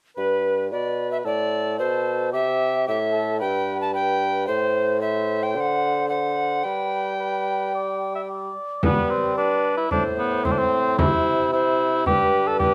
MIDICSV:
0, 0, Header, 1, 5, 480
1, 0, Start_track
1, 0, Key_signature, 1, "major"
1, 0, Tempo, 540054
1, 154, Time_signature, 4, 2, 24, 8
1, 11326, End_track
2, 0, Start_track
2, 0, Title_t, "Recorder"
2, 0, Program_c, 0, 74
2, 153, Note_on_c, 0, 71, 69
2, 601, Note_off_c, 0, 71, 0
2, 638, Note_on_c, 0, 74, 71
2, 986, Note_off_c, 0, 74, 0
2, 992, Note_on_c, 0, 76, 68
2, 1045, Note_off_c, 0, 76, 0
2, 1120, Note_on_c, 0, 74, 81
2, 1587, Note_off_c, 0, 74, 0
2, 1591, Note_on_c, 0, 72, 77
2, 2062, Note_off_c, 0, 72, 0
2, 2072, Note_on_c, 0, 76, 89
2, 2541, Note_off_c, 0, 76, 0
2, 2561, Note_on_c, 0, 76, 81
2, 3020, Note_off_c, 0, 76, 0
2, 3025, Note_on_c, 0, 79, 88
2, 3375, Note_off_c, 0, 79, 0
2, 3386, Note_on_c, 0, 81, 78
2, 3501, Note_off_c, 0, 81, 0
2, 3505, Note_on_c, 0, 79, 89
2, 3968, Note_off_c, 0, 79, 0
2, 3974, Note_on_c, 0, 72, 87
2, 4446, Note_off_c, 0, 72, 0
2, 4454, Note_on_c, 0, 76, 78
2, 4827, Note_on_c, 0, 79, 72
2, 4840, Note_off_c, 0, 76, 0
2, 4939, Note_off_c, 0, 79, 0
2, 4939, Note_on_c, 0, 79, 72
2, 4979, Note_on_c, 0, 78, 78
2, 4987, Note_off_c, 0, 79, 0
2, 5406, Note_off_c, 0, 78, 0
2, 5411, Note_on_c, 0, 78, 77
2, 5898, Note_on_c, 0, 79, 77
2, 5911, Note_off_c, 0, 78, 0
2, 7358, Note_off_c, 0, 79, 0
2, 7853, Note_on_c, 0, 71, 60
2, 8297, Note_off_c, 0, 71, 0
2, 8324, Note_on_c, 0, 71, 63
2, 8794, Note_off_c, 0, 71, 0
2, 8807, Note_on_c, 0, 72, 66
2, 9274, Note_off_c, 0, 72, 0
2, 9283, Note_on_c, 0, 72, 61
2, 9752, Note_off_c, 0, 72, 0
2, 9768, Note_on_c, 0, 72, 65
2, 10234, Note_off_c, 0, 72, 0
2, 10252, Note_on_c, 0, 72, 66
2, 10715, Note_off_c, 0, 72, 0
2, 10729, Note_on_c, 0, 71, 80
2, 11191, Note_off_c, 0, 71, 0
2, 11211, Note_on_c, 0, 71, 75
2, 11326, Note_off_c, 0, 71, 0
2, 11326, End_track
3, 0, Start_track
3, 0, Title_t, "Cor anglais"
3, 0, Program_c, 1, 69
3, 144, Note_on_c, 1, 71, 54
3, 596, Note_off_c, 1, 71, 0
3, 644, Note_on_c, 1, 71, 54
3, 1107, Note_on_c, 1, 69, 62
3, 1120, Note_off_c, 1, 71, 0
3, 1590, Note_off_c, 1, 69, 0
3, 1594, Note_on_c, 1, 69, 59
3, 2060, Note_off_c, 1, 69, 0
3, 2065, Note_on_c, 1, 67, 62
3, 2538, Note_off_c, 1, 67, 0
3, 2549, Note_on_c, 1, 67, 52
3, 2656, Note_off_c, 1, 67, 0
3, 2777, Note_on_c, 1, 69, 57
3, 3016, Note_off_c, 1, 69, 0
3, 3020, Note_on_c, 1, 71, 61
3, 3489, Note_off_c, 1, 71, 0
3, 3498, Note_on_c, 1, 71, 57
3, 3968, Note_off_c, 1, 71, 0
3, 3980, Note_on_c, 1, 72, 61
3, 4425, Note_off_c, 1, 72, 0
3, 4453, Note_on_c, 1, 72, 55
3, 4926, Note_off_c, 1, 72, 0
3, 4944, Note_on_c, 1, 72, 61
3, 5412, Note_off_c, 1, 72, 0
3, 5422, Note_on_c, 1, 72, 52
3, 5910, Note_on_c, 1, 71, 54
3, 5923, Note_off_c, 1, 72, 0
3, 6343, Note_off_c, 1, 71, 0
3, 6394, Note_on_c, 1, 71, 53
3, 6844, Note_off_c, 1, 71, 0
3, 6886, Note_on_c, 1, 74, 58
3, 7238, Note_off_c, 1, 74, 0
3, 7244, Note_on_c, 1, 76, 56
3, 7298, Note_off_c, 1, 76, 0
3, 7363, Note_on_c, 1, 74, 55
3, 7837, Note_off_c, 1, 74, 0
3, 7850, Note_on_c, 1, 59, 85
3, 8087, Note_on_c, 1, 60, 71
3, 8101, Note_off_c, 1, 59, 0
3, 8327, Note_off_c, 1, 60, 0
3, 8333, Note_on_c, 1, 62, 81
3, 8682, Note_off_c, 1, 62, 0
3, 8685, Note_on_c, 1, 64, 74
3, 8802, Note_off_c, 1, 64, 0
3, 8815, Note_on_c, 1, 62, 83
3, 8920, Note_off_c, 1, 62, 0
3, 9050, Note_on_c, 1, 59, 78
3, 9282, Note_on_c, 1, 60, 84
3, 9295, Note_off_c, 1, 59, 0
3, 9345, Note_on_c, 1, 62, 65
3, 9358, Note_off_c, 1, 60, 0
3, 9404, Note_on_c, 1, 60, 90
3, 9417, Note_off_c, 1, 62, 0
3, 9753, Note_off_c, 1, 60, 0
3, 9759, Note_on_c, 1, 64, 98
3, 10229, Note_off_c, 1, 64, 0
3, 10244, Note_on_c, 1, 64, 85
3, 10711, Note_off_c, 1, 64, 0
3, 10723, Note_on_c, 1, 67, 104
3, 11087, Note_on_c, 1, 69, 90
3, 11100, Note_off_c, 1, 67, 0
3, 11186, Note_off_c, 1, 69, 0
3, 11191, Note_on_c, 1, 67, 94
3, 11326, Note_off_c, 1, 67, 0
3, 11326, End_track
4, 0, Start_track
4, 0, Title_t, "Bassoon"
4, 0, Program_c, 2, 70
4, 156, Note_on_c, 2, 43, 55
4, 638, Note_on_c, 2, 47, 57
4, 651, Note_off_c, 2, 43, 0
4, 1105, Note_off_c, 2, 47, 0
4, 1110, Note_on_c, 2, 45, 55
4, 1597, Note_on_c, 2, 47, 54
4, 1610, Note_off_c, 2, 45, 0
4, 2072, Note_on_c, 2, 48, 62
4, 2085, Note_off_c, 2, 47, 0
4, 2550, Note_off_c, 2, 48, 0
4, 2561, Note_on_c, 2, 45, 64
4, 3039, Note_on_c, 2, 43, 57
4, 3052, Note_off_c, 2, 45, 0
4, 3982, Note_off_c, 2, 43, 0
4, 3987, Note_on_c, 2, 45, 67
4, 4939, Note_on_c, 2, 50, 58
4, 4952, Note_off_c, 2, 45, 0
4, 5903, Note_off_c, 2, 50, 0
4, 5908, Note_on_c, 2, 55, 50
4, 7572, Note_off_c, 2, 55, 0
4, 7852, Note_on_c, 2, 55, 66
4, 8772, Note_off_c, 2, 55, 0
4, 8818, Note_on_c, 2, 45, 63
4, 9779, Note_on_c, 2, 48, 69
4, 9792, Note_off_c, 2, 45, 0
4, 10733, Note_on_c, 2, 43, 72
4, 10746, Note_off_c, 2, 48, 0
4, 11326, Note_off_c, 2, 43, 0
4, 11326, End_track
5, 0, Start_track
5, 0, Title_t, "Frame drum"
5, 7847, Note_on_c, 9, 64, 76
5, 7936, Note_off_c, 9, 64, 0
5, 8807, Note_on_c, 9, 64, 50
5, 8896, Note_off_c, 9, 64, 0
5, 9288, Note_on_c, 9, 64, 52
5, 9377, Note_off_c, 9, 64, 0
5, 9765, Note_on_c, 9, 64, 78
5, 9854, Note_off_c, 9, 64, 0
5, 10719, Note_on_c, 9, 64, 53
5, 10808, Note_off_c, 9, 64, 0
5, 11197, Note_on_c, 9, 64, 51
5, 11286, Note_off_c, 9, 64, 0
5, 11326, End_track
0, 0, End_of_file